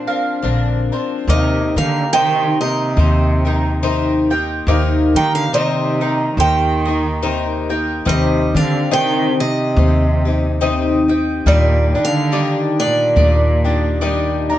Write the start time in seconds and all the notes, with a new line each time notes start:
Already playing: A#3 D4 C5
0.07 F3 C4 D4 A#4 F5
0.42 A#1 A#2 D3 F3 C4 D4 A#4
0.92 F3 C4 D4 A#4 C5
1.28 D#2 C3 D#3 A#3 D#4 G4 A#4 D#5
1.32 C3
1.76 D3 D#3 A#3 D#4 G4 A#4 F5
2.12 C3 D#3 A#3 D#4 G4 A#4 C5 G5
2.61 C3 A#3 D#4 G4 A#4 D#5
2.97 D#2 A#3 D#4 G4 A#4 C5
3.45 A#3 D#4 G4 A#4
3.83 C3 D#3 A#3 D#4 G4 A#4 C5
4.30 A#3 D#4 G4 A#4 G5
4.67 D#2 C3 D#3 A#3 D#4 G4 A#4
5.15 D#3 A#3 D#4 G4 A#4 G5
5.35 D3 F5
5.52 C3 D#3 A#3 D#4 G4 A#4 C5 D#5
6.01 A#3 D#4 G4 A#4
6.37 D#2 D#3 A#3 D#4 G4 A#4 C5 G5
6.85 A#3 D#4 G4 A#4
7.22 C3 D#3 A#3 D#4 G4 A#4 C5
7.70 A#3 D#4 G4 A#4 G5
8.05 D#2 C3 D#3 G3 C4 D#4 G4 D#5
8.55 D3 D#3 C4 D4 G4 F5
8.91 C3 D#3 C4 D4 D#4 G4 G5
9.40 C3 C4 D#4 G4 D#5
9.77 D#2 C4 D#4 G4
10.25 C4 D#4 G4
10.61 C3 D#3 C4 D#4 G4 D#5
11.08 C4 D#4 G4 G5
11.46 D#2 A#2 D#3 G3 A#3 D4 D#4 G4 D5
11.94 D#3 A#3 D4 D#4 G4
12.04 D3 F5
12.32 D#3 G3 A#3 D4 D#4 G4 D5
12.79 A#2 A#3 D4 D#4 G4 D5
13.16 D#2 A#3 D4 D#4 G4 D5
13.64 A#3 D4 D#4 G4
14.01 D#3 G3 A#3 D4 D#4 G4 D5
14.50 A#3 D4 D#4 G4 A#5